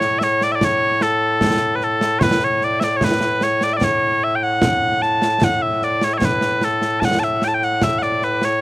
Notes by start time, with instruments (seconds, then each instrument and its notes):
Already playing: bagpipes A2 C#5
0.01 snare
0.19 bagpipes E5, snare
0.23 bagpipes C#5
0.41 bagpipes D5, snare
0.52 bagpipes D5 E5
0.61 bagpipes C#5, concert bass drum, snare
1.01 bagpipes A4, snare
1.41 concert bass drum, snare
1.75 bagpipes B4
1.81 bagpipes A4, snare
2.01 snare
2.19 bagpipes B4 C#5, concert bass drum, snare
2.44 bagpipes C#5
2.61 bagpipes D5, snare
2.80 bagpipes D5 E5, snare
2.97 bagpipes C#5
3.01 bagpipes B4, concert bass drum, snare
3.21 snare
3.41 bagpipes C#5, snare
3.61 bagpipes D5, snare
3.73 bagpipes D5 E5
3.81 bagpipes C#5, concert bass drum, snare
4.24 bagpipes E5
4.36 bagpipes G5
4.43 bagpipes F#5
4.62 concert bass drum, snare
5.02 bagpipes A5, snare
5.22 snare
5.42 bagpipes F#5, concert bass drum, snare
5.62 bagpipes E5
5.82 bagpipes D5, snare
6.01 bagpipes C#5, snare
6.14 bagpipes E5
6.18 bagpipes C#5, concert bass drum, snare
6.25 bagpipes B4
6.41 snare
6.61 bagpipes A4, snare
6.82 snare
7.00 bagpipes A5, concert bass drum, snare
7.05 bagpipes F#5
7.19 bagpipes A5, snare
7.24 bagpipes E5
7.42 bagpipes G5, snare
7.48 bagpipes A5
7.54 bagpipes G5
7.62 bagpipes F#5, snare
7.82 bagpipes E5, concert bass drum, snare
7.99 bagpipes D5 F#5, snare
8.22 bagpipes B4, snare
8.42 bagpipes C#5, snare